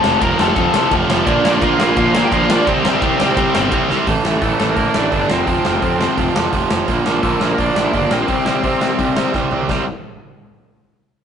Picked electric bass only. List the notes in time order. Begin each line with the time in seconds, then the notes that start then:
0.04 F1
0.22 F1
0.39 F1
0.56 F1
0.74 C2
0.92 F1
1.10 F1
1.27 A#1
1.46 A#1
1.62 A#1
1.81 A#1
1.97 A#1
2.32 A#1
2.68 C2
2.85 C2
3.02 C2
3.21 C2
3.37 C2
3.56 G1
3.72 C2
3.90 C2
4.08 A1
4.25 A1
4.42 A1
4.61 A1
4.77 A1
4.95 A1
5.13 G1
5.31 F1
5.47 F1
5.66 F1
5.83 F2
6.18 F1
6.36 F2
6.54 F1
6.71 F1
6.89 A#1
7.07 A#1
7.23 A#1
7.41 A#1
7.59 A#1
7.76 A#1
7.94 G1
8.11 A#1
8.29 C2
8.47 C2
8.64 C3
8.99 C2
9.17 C3
9.34 C2
9.53 C2
9.69 C2